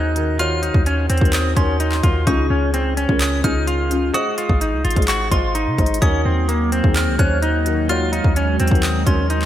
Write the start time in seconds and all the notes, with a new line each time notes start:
Already playing: D#2 D#3 D#4 F#4 G#4 A#4 C5 F#6
0.15 D#3 D#4 F#4 A#4, closed hi-hat
0.38 D#3 D#4 F4 F#4 C#5 F6, closed hi-hat
0.63 D#4, closed hi-hat
0.74 D#2, kick
0.86 C#4, closed hi-hat
1.10 D#2 C4, closed hi-hat
1.18 D#2 D#3 D#4, kick, closed hi-hat
1.22 F#4 A#4, closed hi-hat
1.33 D#6, clap, closed hi-hat
1.55 D#2 D#3 C#4 D#4 F#4 A#4 C6, kick, closed hi-hat
1.80 D#4, closed hi-hat
1.92 clap
2.02 D#2 D#3 D#4 F4 F#4 A#4, kick, closed hi-hat
2.26 C#2 C#3 C#4 D#4 F4 G#4 C#6, kick, closed hi-hat
2.50 C#2 C#4
2.74 C4, closed hi-hat
2.97 C#4, closed hi-hat
3.08 C#2 C#3 C#4 F4 A#4, kick
3.21 D#6, clap, closed hi-hat
3.43 C#2 C#3 C#4 D#4 F4 G#4 F6, kick, closed hi-hat
3.67 F4, closed hi-hat
3.90 C#3 C#4 F4 G#4, closed hi-hat
4.13 G#3 F#4 G#4 C5 D#5 D#6, closed hi-hat
4.38 F4, closed hi-hat
4.49 G#1, kick
4.61 D#4, closed hi-hat
4.73 C2
4.84 G#1 F4, closed hi-hat
4.90 closed hi-hat
4.95 G#1 G#3 G#4 C5 D#5, kick, closed hi-hat
5.02 closed hi-hat
5.08 F#4 C#6, clap, closed hi-hat
5.30 G#1 G#3 F4 G#4 C5 D#5 C6, kick, closed hi-hat
5.55 D#4, closed hi-hat
5.67 C3
5.77 G#1 G#3 G#4 C5 D#5, kick, closed hi-hat
5.86 closed hi-hat
5.94 closed hi-hat
6.01 D#2 D#3 F#3 A#3 C#4 D#4 F#4 A#4 D#6, kick, closed hi-hat
6.25 D#2 C4
6.49 A#3, closed hi-hat
6.72 C4, closed hi-hat
6.83 D#2 D#3 D#4 F#4 G#4, kick
6.96 F6, clap, closed hi-hat
7.07 C#2
7.18 D#2 D#3 C#4 D#4 F#4 C5 F#6, kick, closed hi-hat
7.42 D#4, closed hi-hat
7.65 D#3 D#4 F#4 A#4, closed hi-hat
7.88 D#3 G#3 D#4 F4 F#4 C#5 F6, closed hi-hat
8.12 D#4, closed hi-hat
8.24 D#2, kick
8.36 C#4, closed hi-hat
8.60 D#2 C4, closed hi-hat
8.67 D#2 D#3 D#4, kick, closed hi-hat
8.72 F#4 A#4, closed hi-hat
8.83 D#6, clap, closed hi-hat
9.05 D#2 D#3 C#4 D#4 F#4 A#4 C6, kick, closed hi-hat
9.30 D#4, closed hi-hat
9.42 clap